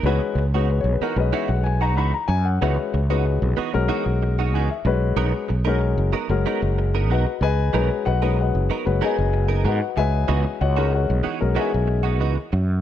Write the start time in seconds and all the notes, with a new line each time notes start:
0.03 C#2 E3 G#3 B3 C#4 D#4 F#4 B4
0.22 muted clean electric guitar stroke
0.35 C#2, muted clean electric guitar stroke
0.54 G#3 B3 C#4 D#4 F#4 B4
0.70 B4, muted clean electric guitar stroke
0.81 B1 C#5
0.93 B4
1.01 E3 B3 D#4 F#4 A#4, muted fretless electric bass stroke
1.16 B1 G#3 C#4 F#4 B4 D#5, muted clean electric guitar stroke
1.33 E3 B3 D#4 F#4 E5
1.49 B1 F#5, muted clean electric guitar stroke
1.64 G#5, muted clean electric guitar stroke
1.81 B3 D#4 F#4 A#5
1.96 C#2 E3 B3 D#4 F#4 B5
2.13 A#5, muted clean electric guitar stroke
2.28 F#2 G#5, muted clean electric guitar stroke
2.45 F#5
2.61 C#2 E3 G#3 B3 C#4 D#4 F#4 B4 E5
2.77 muted clean electric guitar stroke
2.94 C#2, muted clean electric guitar stroke
3.10 G#3 B3 C#4 D#4 F#4 B4
3.26 muted clean electric guitar stroke
3.42 B1
3.57 E3 B3 D#4 F#4, muted fretless electric bass stroke
3.73 B1 G#3 C#4 F#4 A#4, muted clean electric guitar stroke
3.88 E3 B3 D#4 F#4
4.06 B1, muted clean electric guitar stroke
4.23 muted clean electric guitar stroke
4.39 B3 D#4 F#4
4.53 C#2 E3 B3 D#4 F#4 G#5
4.70 E5, muted clean electric guitar stroke
4.85 B1 G#3 C#4 F#4 B4 D#5, muted clean electric guitar stroke
5.16 B1 F#3 B3 D#4 A#4
5.33 muted clean electric guitar stroke
5.49 B1, muted clean electric guitar stroke
5.65 G#3 B3 C#4 D#4 F#4 A#4
5.80 muted clean electric guitar stroke
5.98 F#1
6.13 F#3 B3 D#4 A#4, muted fretless electric bass stroke
6.29 F#1 G#3 C#4 F#4 A#4, muted clean electric guitar stroke
6.46 F#3 B3 D#4 A#4
6.62 F#1, muted clean electric guitar stroke
6.78 muted clean electric guitar stroke
6.95 B3 D#4 A#4
7.10 B1 F#3 B3 D#4 F#4 A#4 B4 D#5 F#5
7.27 muted clean electric guitar stroke
7.41 C#2 G#4 B4 D#5 G#5, muted clean electric guitar stroke
7.73 B1 F#3 G#3 B3 C#4 D#4 F#4 A#4 B4
7.91 muted clean electric guitar stroke
8.05 B1 F#4 B4 D#5 F#5, muted clean electric guitar stroke
8.22 G#3 B3 C#4 D#4 F#4 A#4 B4
8.38 F#4 B4 D#5 F#5, muted clean electric guitar stroke
8.55 F#1
8.70 F#3 B3 D#4 A#4, muted fretless electric bass stroke
8.86 F#1 G#3 C#4 F#4 B4, muted clean electric guitar stroke
9.01 F#3 B3 D#4 G#4 A#4 B4 D#5 G#5
9.18 F#1
9.33 muted clean electric guitar stroke
9.48 B3 D#4 A#4
9.64 G#2 F#3 B3 D#4 F#4 A#4 B4 F#5
9.68 D#5
9.80 muted clean electric guitar stroke
9.96 C#2 G#3 C#4 F#4 G#4 B4 D#5 E5 G#5, muted clean electric guitar stroke
10.28 C#2 E3 B3 D#4 F#4
10.45 muted clean electric guitar stroke
10.61 C#2 F#4 C#5 D#5 F#5, muted clean electric guitar stroke
10.76 G#3 B3 C#4 D#4 F#4 A#4
10.92 F#4 C#5 D#5 F#5, muted clean electric guitar stroke
11.10 B1
11.23 E3 B3 D#4 F#4, muted fretless electric bass stroke
11.41 B1 G#3 C#4 F#4 A#4, muted clean electric guitar stroke
11.55 E3 B3 D#4 F#4 G#4 D#5 E5 G#5
11.73 B1, muted clean electric guitar stroke
11.87 muted clean electric guitar stroke
12.03 B3 D#4 F#4
12.20 C#2 E3 B3 D#4 F#4
12.37 muted clean electric guitar stroke
12.52 F#2, muted clean electric guitar stroke